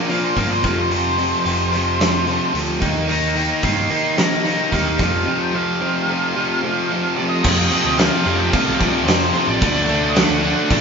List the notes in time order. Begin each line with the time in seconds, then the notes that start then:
Already playing: A#3 D4 F4
0.08 A#2 F3 A#3 F5, open hi-hat
0.24 C5
0.36 G1 A#2 F3 A#3 F5, kick, open hi-hat
0.51 C5
0.63 F1 F2 C3 F3 F5, kick, open hi-hat
0.78 C5
0.91 F2 C3 F3 C5, open hi-hat
1.18 F2 C3 F3, open hi-hat
1.45 F1 F2 C3 F3 F4, open hi-hat
1.72 F2 C3 F3 C4, open hi-hat
2.00 F2 C3 F3 A3, snare, open hi-hat
2.27 F2 C3 F3, open hi-hat
2.54 D2 F2 C3 F3 A3, open hi-hat
2.81 D#2 D#3 A#3 D#4, kick, open hi-hat
3.07 D#3 A#3 D#4 A#5, open hi-hat
3.35 D#3 A#3 D#4, open hi-hat
3.62 G2 D#3 A#3 D#4 C6, kick, open hi-hat
3.90 D#3 A#3 D#4, open hi-hat
4.17 D#3 G3 A#3 D#4 A#5, snare, open hi-hat
4.44 D#3 A#3 D#4, snare, open hi-hat
4.72 D#2 D#3 G3 A#3 D#4 F5, kick, open hi-hat
4.86 F5
4.99 F2 C3 F3, kick, open hi-hat
5.26 F2 C3 F3
5.41 G5
5.53 F2 C3 F3 F5
5.81 F2 C3 F3 C4
6.09 F2 C3 F3 A3
6.36 F2 C3 F3
6.63 F2 C3 F3
6.91 F2 C3 F3
7.16 F2 C3 F3 A3 D5
7.29 D#5
7.44 F2 C3 F3 A#3 C4, kick, crash
7.72 F2 C3 F3, crash
7.85 D2
7.98 F2 C3 F3 F5, snare, crash
8.25 F2 C3 F3 A#3 C4 F5, crash
8.39 G5
8.52 F2 C3 F3 F5, kick, crash
8.66 C2
8.79 F2 C3 F3 D5, kick, crash
9.06 F2 C3 F3 A#3 C4 C5, snare, crash
9.33 F2 C3 F3 C5, crash
9.47 A1 D5
9.60 D2 D3 F#3 A3 D4, kick, crash
9.87 D2 D3 A3 D4, crash
10.09 D#5
10.15 D3 A3 D4 F#5, snare, crash
10.29 D2
10.43 D3 F#3 A3 D4 F#5, crash
10.70 A1 D3 A3 D4 D5, kick, crash